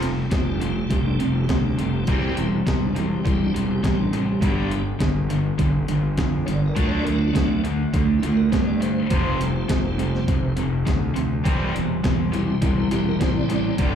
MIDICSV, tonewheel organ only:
0, 0, Header, 1, 2, 480
1, 0, Start_track
1, 0, Tempo, 585366
1, 1709, Time_signature, 4, 2, 24, 8
1, 11439, End_track
2, 0, Start_track
2, 0, Title_t, "Tonewheel organ"
2, 0, Program_c, 0, 16
2, 0, Note_on_c, 0, 55, 51
2, 0, Note_on_c, 0, 57, 50
2, 0, Note_on_c, 0, 65, 57
2, 277, Note_on_c, 0, 67, 95
2, 386, Note_off_c, 0, 67, 0
2, 403, Note_on_c, 0, 62, 81
2, 509, Note_off_c, 0, 62, 0
2, 518, Note_on_c, 0, 60, 76
2, 626, Note_off_c, 0, 60, 0
2, 628, Note_off_c, 0, 65, 0
2, 638, Note_on_c, 0, 65, 80
2, 713, Note_on_c, 0, 66, 56
2, 743, Note_off_c, 0, 66, 0
2, 745, Note_off_c, 0, 65, 0
2, 751, Note_on_c, 0, 67, 77
2, 862, Note_off_c, 0, 67, 0
2, 869, Note_on_c, 0, 62, 90
2, 981, Note_off_c, 0, 62, 0
2, 984, Note_on_c, 0, 60, 91
2, 1093, Note_on_c, 0, 65, 80
2, 1098, Note_off_c, 0, 60, 0
2, 1180, Note_on_c, 0, 66, 55
2, 1212, Note_off_c, 0, 65, 0
2, 1213, Note_off_c, 0, 66, 0
2, 1213, Note_on_c, 0, 67, 80
2, 1332, Note_off_c, 0, 67, 0
2, 1354, Note_on_c, 0, 62, 84
2, 1463, Note_off_c, 0, 62, 0
2, 1485, Note_on_c, 0, 60, 81
2, 1586, Note_on_c, 0, 67, 80
2, 1589, Note_off_c, 0, 60, 0
2, 1676, Note_off_c, 0, 57, 0
2, 1677, Note_off_c, 0, 55, 0
2, 1680, Note_on_c, 0, 66, 58
2, 1699, Note_off_c, 0, 67, 0
2, 1709, Note_off_c, 0, 66, 0
2, 1713, Note_on_c, 0, 55, 47
2, 1722, Note_on_c, 0, 60, 47
2, 1726, Note_on_c, 0, 64, 55
2, 1729, Note_on_c, 0, 67, 92
2, 1952, Note_off_c, 0, 67, 0
2, 2030, Note_off_c, 0, 55, 0
2, 2035, Note_off_c, 0, 60, 0
2, 2037, Note_off_c, 0, 64, 0
2, 2195, Note_on_c, 0, 67, 88
2, 2304, Note_off_c, 0, 67, 0
2, 2341, Note_on_c, 0, 62, 77
2, 2438, Note_off_c, 0, 62, 0
2, 2449, Note_on_c, 0, 60, 84
2, 2551, Note_off_c, 0, 60, 0
2, 2576, Note_on_c, 0, 67, 76
2, 2654, Note_on_c, 0, 66, 63
2, 2675, Note_off_c, 0, 67, 0
2, 2680, Note_off_c, 0, 66, 0
2, 2685, Note_on_c, 0, 60, 41
2, 2685, Note_on_c, 0, 64, 47
2, 2689, Note_on_c, 0, 55, 42
2, 2694, Note_on_c, 0, 67, 95
2, 2794, Note_off_c, 0, 67, 0
2, 2826, Note_on_c, 0, 62, 90
2, 2894, Note_off_c, 0, 60, 0
2, 2894, Note_off_c, 0, 64, 0
2, 2896, Note_off_c, 0, 55, 0
2, 2916, Note_on_c, 0, 60, 81
2, 2921, Note_off_c, 0, 62, 0
2, 3025, Note_off_c, 0, 60, 0
2, 3042, Note_on_c, 0, 67, 88
2, 3148, Note_off_c, 0, 67, 0
2, 3153, Note_on_c, 0, 66, 62
2, 3176, Note_off_c, 0, 66, 0
2, 3185, Note_on_c, 0, 67, 85
2, 3273, Note_on_c, 0, 62, 96
2, 3280, Note_off_c, 0, 67, 0
2, 3383, Note_off_c, 0, 62, 0
2, 3400, Note_on_c, 0, 60, 81
2, 3507, Note_off_c, 0, 60, 0
2, 3543, Note_on_c, 0, 67, 78
2, 3620, Note_on_c, 0, 66, 66
2, 3639, Note_off_c, 0, 67, 0
2, 3645, Note_off_c, 0, 66, 0
2, 3646, Note_on_c, 0, 55, 55
2, 3655, Note_on_c, 0, 59, 50
2, 3657, Note_on_c, 0, 67, 85
2, 3662, Note_on_c, 0, 62, 57
2, 3877, Note_off_c, 0, 67, 0
2, 3958, Note_off_c, 0, 55, 0
2, 3963, Note_off_c, 0, 59, 0
2, 3966, Note_off_c, 0, 62, 0
2, 5293, Note_on_c, 0, 73, 76
2, 5320, Note_off_c, 0, 73, 0
2, 5330, Note_on_c, 0, 74, 101
2, 5433, Note_off_c, 0, 74, 0
2, 5461, Note_on_c, 0, 70, 83
2, 5552, Note_on_c, 0, 54, 53
2, 5559, Note_off_c, 0, 70, 0
2, 5566, Note_on_c, 0, 57, 48
2, 5572, Note_on_c, 0, 62, 64
2, 5574, Note_on_c, 0, 65, 87
2, 5636, Note_on_c, 0, 73, 71
2, 5666, Note_off_c, 0, 73, 0
2, 5667, Note_on_c, 0, 74, 112
2, 5675, Note_off_c, 0, 65, 0
2, 5777, Note_on_c, 0, 70, 100
2, 5781, Note_off_c, 0, 74, 0
2, 5880, Note_on_c, 0, 65, 95
2, 5895, Note_off_c, 0, 70, 0
2, 5996, Note_off_c, 0, 62, 0
2, 6006, Note_on_c, 0, 62, 107
2, 6007, Note_off_c, 0, 65, 0
2, 6240, Note_off_c, 0, 54, 0
2, 6247, Note_off_c, 0, 57, 0
2, 6252, Note_off_c, 0, 62, 0
2, 6711, Note_on_c, 0, 64, 57
2, 6743, Note_off_c, 0, 64, 0
2, 6750, Note_on_c, 0, 65, 83
2, 6860, Note_on_c, 0, 70, 92
2, 6863, Note_off_c, 0, 65, 0
2, 6978, Note_off_c, 0, 70, 0
2, 6987, Note_on_c, 0, 72, 73
2, 7102, Note_off_c, 0, 72, 0
2, 7111, Note_on_c, 0, 74, 98
2, 7224, Note_off_c, 0, 74, 0
2, 7230, Note_on_c, 0, 72, 94
2, 7718, Note_on_c, 0, 55, 59
2, 7721, Note_on_c, 0, 57, 53
2, 7729, Note_on_c, 0, 65, 60
2, 8403, Note_off_c, 0, 55, 0
2, 8405, Note_off_c, 0, 57, 0
2, 8409, Note_off_c, 0, 65, 0
2, 8639, Note_off_c, 0, 72, 0
2, 10119, Note_on_c, 0, 60, 52
2, 10125, Note_on_c, 0, 55, 51
2, 10126, Note_on_c, 0, 64, 61
2, 10587, Note_on_c, 0, 66, 61
2, 10611, Note_off_c, 0, 66, 0
2, 10616, Note_on_c, 0, 67, 102
2, 10717, Note_off_c, 0, 67, 0
2, 10729, Note_on_c, 0, 70, 87
2, 10834, Note_off_c, 0, 70, 0
2, 10842, Note_on_c, 0, 72, 88
2, 10950, Note_off_c, 0, 72, 0
2, 10950, Note_on_c, 0, 74, 95
2, 11063, Note_off_c, 0, 74, 0
2, 11083, Note_on_c, 0, 74, 106
2, 11283, Note_off_c, 0, 60, 0
2, 11286, Note_off_c, 0, 55, 0
2, 11286, Note_off_c, 0, 64, 0
2, 11308, Note_on_c, 0, 59, 49
2, 11315, Note_on_c, 0, 55, 57
2, 11325, Note_on_c, 0, 62, 57
2, 11439, Note_off_c, 0, 55, 0
2, 11439, Note_off_c, 0, 59, 0
2, 11439, Note_off_c, 0, 62, 0
2, 11439, Note_off_c, 0, 74, 0
2, 11439, End_track
0, 0, End_of_file